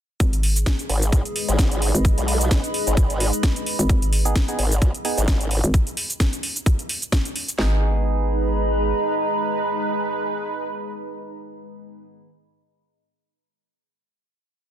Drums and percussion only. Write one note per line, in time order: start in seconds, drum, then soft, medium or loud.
0.20 kick loud
0.20 closed hi-hat medium
0.20 shaker medium
0.33 closed hi-hat medium
0.33 shaker soft
0.43 open hi-hat loud
0.56 closed hi-hat soft
0.56 shaker medium
0.66 kick loud
0.66 snare loud
0.66 closed hi-hat medium
0.66 shaker medium
0.79 closed hi-hat medium
0.79 shaker soft
0.89 open hi-hat medium
1.02 closed hi-hat soft
1.02 shaker medium
1.12 kick loud
1.12 closed hi-hat medium
1.12 shaker medium
1.25 closed hi-hat medium
1.25 shaker soft
1.36 open hi-hat loud
1.49 closed hi-hat soft
1.49 shaker medium
1.59 kick loud
1.59 snare loud
1.59 closed hi-hat medium
1.59 shaker medium
1.72 closed hi-hat medium
1.72 shaker soft
1.82 open hi-hat medium
1.95 closed hi-hat soft
1.95 shaker medium
2.05 kick loud
2.05 closed hi-hat medium
2.05 shaker medium
2.18 closed hi-hat medium
2.18 shaker soft
2.28 open hi-hat loud
2.41 closed hi-hat soft
2.41 shaker medium
2.51 kick loud
2.51 snare loud
2.51 closed hi-hat medium
2.51 shaker medium
2.64 closed hi-hat medium
2.64 shaker soft
2.74 open hi-hat medium
2.87 closed hi-hat soft
2.87 shaker medium
2.97 kick loud
2.97 closed hi-hat medium
2.97 shaker medium
3.10 closed hi-hat medium
3.10 shaker soft
3.20 open hi-hat loud
3.33 closed hi-hat soft
3.33 shaker medium
3.43 kick loud
3.43 snare loud
3.43 closed hi-hat medium
3.43 shaker medium
3.56 closed hi-hat medium
3.56 shaker soft
3.66 open hi-hat medium
3.79 closed hi-hat soft
3.79 shaker medium
3.89 kick loud
3.89 closed hi-hat medium
3.89 shaker medium
4.02 closed hi-hat medium
4.02 shaker soft
4.13 open hi-hat loud
4.25 closed hi-hat soft
4.25 shaker medium
4.36 kick loud
4.36 snare loud
4.36 closed hi-hat medium
4.36 shaker soft
4.48 closed hi-hat medium
4.48 shaker soft
4.59 open hi-hat loud
4.71 closed hi-hat soft
4.71 shaker medium
4.82 kick loud
4.82 closed hi-hat medium
4.82 shaker medium
4.94 closed hi-hat medium
4.94 shaker soft
5.05 open hi-hat loud
5.18 closed hi-hat soft
5.18 shaker medium
5.28 kick loud
5.28 snare loud
5.28 closed hi-hat medium
5.28 shaker medium
5.41 closed hi-hat medium
5.41 shaker soft
5.51 open hi-hat loud
5.64 closed hi-hat soft
5.64 shaker medium
5.74 kick loud
5.74 closed hi-hat medium
5.74 shaker medium
5.87 closed hi-hat medium
5.87 shaker soft
5.97 open hi-hat loud
6.10 closed hi-hat soft
6.10 shaker medium
6.20 kick loud
6.20 snare loud
6.20 closed hi-hat medium
6.20 shaker medium
6.33 closed hi-hat medium
6.33 shaker soft
6.43 open hi-hat medium
6.56 closed hi-hat soft
6.56 shaker medium
6.66 kick loud
6.66 closed hi-hat medium
6.66 shaker medium
6.79 closed hi-hat soft
6.79 shaker soft
6.89 open hi-hat loud
7.02 closed hi-hat soft
7.02 shaker medium
7.12 kick loud
7.12 snare loud
7.12 closed hi-hat medium
7.12 shaker medium
7.25 closed hi-hat soft
7.25 shaker soft
7.36 open hi-hat loud
7.48 closed hi-hat soft
7.48 shaker medium
7.59 snare loud